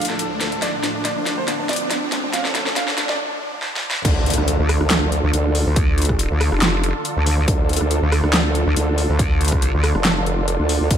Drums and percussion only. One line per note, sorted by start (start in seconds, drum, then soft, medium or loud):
0.01 closed hi-hat medium
0.05 closed hi-hat medium
0.09 snare medium
0.19 closed hi-hat medium
0.41 snare medium
0.41 closed hi-hat medium
0.52 closed hi-hat soft
0.62 snare medium
0.62 closed hi-hat medium
0.84 snare medium
0.84 closed hi-hat medium
1.05 snare medium
1.05 closed hi-hat medium
1.26 snare medium
1.26 closed hi-hat medium
1.48 snare medium
1.48 closed hi-hat medium
1.69 snare medium
1.69 closed hi-hat soft
1.73 closed hi-hat medium
1.76 closed hi-hat medium
1.91 snare medium
1.91 closed hi-hat medium
2.12 snare medium
2.12 closed hi-hat medium
2.33 snare medium
2.33 closed hi-hat medium
2.45 snare medium
2.55 snare medium
2.55 closed hi-hat soft
2.66 snare medium
2.76 snare loud
2.76 closed hi-hat medium
2.88 snare medium
2.98 snare loud
2.98 closed hi-hat soft
3.09 snare medium
3.62 snare medium
3.76 snare medium
3.91 snare loud
4.05 kick loud
4.05 closed hi-hat medium
4.05 crash loud
4.26 closed hi-hat soft
4.30 closed hi-hat medium
4.34 closed hi-hat medium
4.38 cross-stick soft
4.48 closed hi-hat medium
4.69 cross-stick medium
4.69 open hi-hat medium
4.81 cross-stick medium
4.91 snare loud
4.91 clap medium
4.91 closed hi-hat medium
5.12 closed hi-hat medium
5.33 closed hi-hat medium
5.55 open hi-hat medium
5.76 kick loud
5.76 closed hi-hat medium
5.98 closed hi-hat soft
6.02 closed hi-hat medium
6.05 closed hi-hat medium
6.09 kick medium
6.09 cross-stick soft
6.19 closed hi-hat medium
6.41 cross-stick medium
6.41 open hi-hat medium
6.52 cross-stick medium
6.62 snare loud
6.62 clap medium
6.62 closed hi-hat medium
6.84 closed hi-hat medium
7.05 closed hi-hat medium
7.26 open hi-hat medium
7.48 kick loud
7.48 closed hi-hat medium
7.69 closed hi-hat soft
7.73 closed hi-hat medium
7.76 closed hi-hat medium
7.81 cross-stick soft
7.91 closed hi-hat medium
8.12 cross-stick medium
8.12 open hi-hat medium
8.24 cross-stick medium
8.34 snare loud
8.34 clap medium
8.34 closed hi-hat medium
8.55 closed hi-hat medium
8.76 closed hi-hat medium
8.98 open hi-hat medium
9.19 kick loud
9.19 closed hi-hat medium
9.41 closed hi-hat soft
9.45 closed hi-hat medium
9.48 closed hi-hat medium
9.52 kick medium
9.52 cross-stick soft
9.62 closed hi-hat medium
9.84 cross-stick medium
9.84 open hi-hat medium
9.95 cross-stick medium
10.05 snare loud
10.05 clap medium
10.05 closed hi-hat medium
10.26 closed hi-hat medium
10.48 closed hi-hat medium
10.69 open hi-hat medium
10.91 kick loud
10.91 closed hi-hat medium